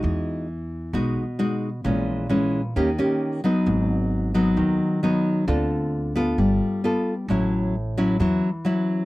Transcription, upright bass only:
\new Staff \with { instrumentName = "Upright bass" } { \clef bass \time 4/4 \key e \major \tempo 4 = 132 e,2 b,,8 r4. | ais,,2 dis,8 r4. | gis,,2 dis,8 r4. | d,2 g,,8 r4. |
a,,2 e,8 r4. | }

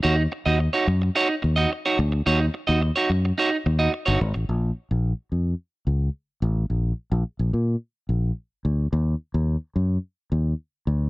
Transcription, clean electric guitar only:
\new Staff \with { instrumentName = "Clean electric guitar" } { \time 4/4 \key ees \dorian \tempo 4 = 108 <ees' ges' des''>16 r8 <ees' ges' ees''>16 r16 <ees' ges' des''>16 r8 <ees' ges' des''>16 r8 <ees' ges' ees''>16 r16 <ees' ges' des''>16 r8 | <ees' ges' des''>16 r8 <ees' ges' ees''>16 r16 <ees' ges' des''>16 r8 <ees' ges' des''>16 r8 <ees' ges' ees''>16 r16 <ees' ges' des''>16 r8 | r1 | r1 |
r1 | }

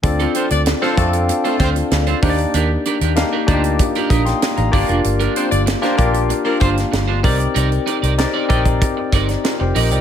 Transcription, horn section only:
\new Staff \with { instrumentName = "Horn section" } { \time 4/4 \key c \dorian \tempo 4 = 96 r8 <c' c''>16 <d' d''>16 r16 <c' c''>16 <a a'>16 r8 <a a'>16 <c' c''>16 r4 r16 | r1 | r8 <c' c''>16 <d' d''>16 r16 <c' c''>16 <bes bes'>16 r8 <bes bes'>16 <c' c''>16 r4 r16 | r1 | }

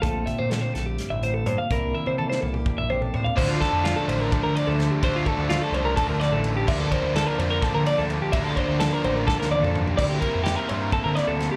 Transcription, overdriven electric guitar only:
\new Staff \with { instrumentName = "Overdriven electric guitar" } { \clef bass \time 7/8 \key d \minor \tempo 4 = 127 r2. r8 | r2. r8 | <d f a d'>2.~ <d f a d'>8 | <d f a d'>2.~ <d f a d'>8 |
<d f bes d'>2.~ <d f bes d'>8 | <d f bes d'>2.~ <d f bes d'>8 | <c g bes e'>2.~ <c g bes e'>8 | }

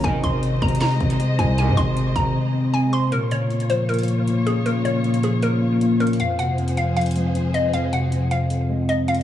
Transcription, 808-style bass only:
\new Staff \with { instrumentName = "808-style bass" } { \clef bass \time 4/4 \key bes \minor \tempo 4 = 156 aes,,8 aes,,4 aes,,8 r8 aes,,8 r8 c,8~ | c,16 aes,16 aes,,4 aes,,8 r2 | r1 | r1 |
r1 | r1 | }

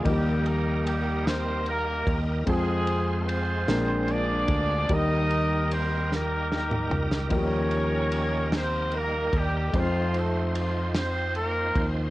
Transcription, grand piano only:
<<
  \new Staff \with { instrumentName = "Grand piano" } { \time 6/8 \key ees \mixolydian \tempo 4. = 50 <f g bes ees' bes'>2. | <aes c' f' c''>4. <aes c' d' bes'>4. | <g bes ees' bes'>2. | <f g bes ees' bes'>2. |
<aes c' ees' f' c''>2. | }
  \new Staff \with { instrumentName = "Grand piano" } { \clef bass \time 6/8 \key ees \mixolydian ees4. r4. | r4. bes,4. | ees4. r4. | ees4. r4. |
r2. | }
>>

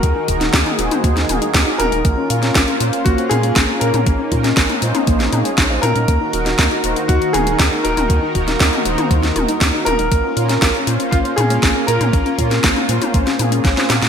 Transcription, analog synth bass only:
\new Staff \with { instrumentName = "Analog synth bass" } { \clef bass \time 4/4 \key bes \minor \tempo 4 = 119 ees,16 r16 ees,,8 ees,16 r16 ees,,16 r16 ees,8 ees,,16 r16 ees,16 r16 ees,,16 ees,,16 | bes,,16 r16 bes,8 bes,,16 r16 bes,16 r16 bes,,16 r16 bes,8 bes,,16 r16 bes,16 bes,16 | bes,,16 r16 bes,8 bes,,16 r16 bes,16 r16 bes,,8 bes,16 r16 bes,,8 bes,16 bes,16 | ees,16 r16 ees,,8 ees,16 r16 ees,,16 r16 ees,16 r16 ees,,8 ees,16 r16 ees,,16 ees,,16 |
ees,16 r16 ees,,8 ees,16 r16 ees,,16 r16 ees,8 ees,,16 r16 ees,16 r16 ees,,16 ees,,16 | bes,,16 r16 bes,8 bes,,16 r16 bes,16 r16 bes,,16 r16 bes,8 bes,,16 r16 bes,16 bes,16 | bes,,16 r16 bes,8 bes,,16 r16 bes,16 r16 bes,,16 r16 bes,8 bes,,16 r16 bes,16 bes,16 | }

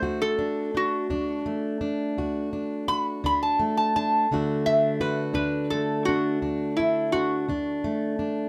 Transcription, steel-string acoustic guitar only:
\new Staff \with { instrumentName = "Steel-string acoustic guitar" } { \time 12/8 \key d \major \tempo 4. = 56 << { fis'8 d'8 d'8 d'8 a8 d'8 fis'8 d'8 fis'8 d'8 a8 d'8 | <d a d' fis'>8 d'8 fis'8 d'8 a8 d'8 d'8 d'8 d'8 d'8 a8 d'8 | } \\ { d,4 r8 d,4 r8 d,4 r8 d,4 r8 | d,4 r8 d,4 r8 d,4 r8 d,4 r8 | } >> }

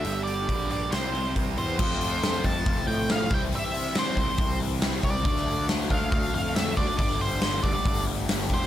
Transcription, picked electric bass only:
\new Staff \with { instrumentName = "Picked electric bass" } { \clef bass \time 4/4 \key f \major \tempo 4 = 139 g,,4 bes,,4 c,4 c,8 e,8 | f,4. f,8 f,16 r16 a,4 c,8 | r4. c,16 r16 c,4. c,8 | d,4. d,8 d,16 r16 f,4 d,16 r16 |
g,,4. g,,16 r16 g,,4. e,,8 | }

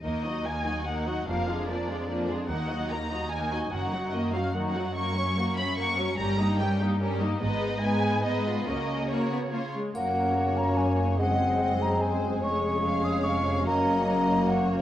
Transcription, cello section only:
\new Staff \with { instrumentName = "Cello section" } { \clef bass \time 3/4 \key ees \minor \tempo 4 = 146 ees,2. | f,2. | ees,2. | ges,2.~ |
\key fis \major ges,2. | g,2. | gis,2. | cis2~ cis8 r8 |
fis,2.~ | fis,2. | eis,2. | fis,2. | }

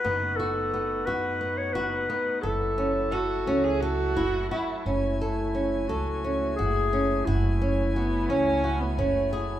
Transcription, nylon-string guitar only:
\new Staff \with { instrumentName = "Nylon-string guitar" } { \time 7/8 \key fis \dorian \tempo 4 = 88 b8 fis'8 b8 fis'8 b8 fis'8 b8 | a'8 cis'8 a'8 cis'8 a'8 e'8 fis'8 | cis'8 a'8 cis'8 a'8 cis'8 fis'8 cis'8 | fis'8 cis'8 fis'8 cis'8 fis'8 cis'8 gis'8 | }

